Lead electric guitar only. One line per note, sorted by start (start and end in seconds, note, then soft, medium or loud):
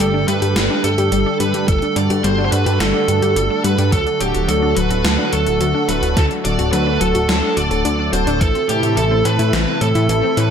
0.00 0.28 A4 medium
0.28 0.84 B4 medium
0.84 1.36 A4 medium
1.40 1.68 B4 medium
1.68 1.97 A4 medium
1.96 2.25 D5 medium
2.24 2.44 C5 medium
2.45 2.52 C5 medium
2.52 2.80 B4 medium
2.80 3.64 A4 medium
3.64 3.92 B4 medium
3.92 4.21 A4 medium
4.20 4.49 G4 medium
4.48 4.76 A4 medium
4.76 5.34 B4 loud
5.32 5.90 A4 medium
5.88 6.17 B4 medium
6.17 6.24 A4 medium
6.45 6.72 D5 loud
6.72 6.99 B4 medium
7.01 7.28 A4 medium
7.29 7.58 A4 medium
7.57 8.12 D5 loud
8.13 8.42 C5 medium
8.41 8.68 A4 medium
8.69 8.97 G4 medium
8.97 9.26 A4 medium
9.25 9.83 B4 loud
9.81 10.39 A4 loud
10.37 10.50 B4 medium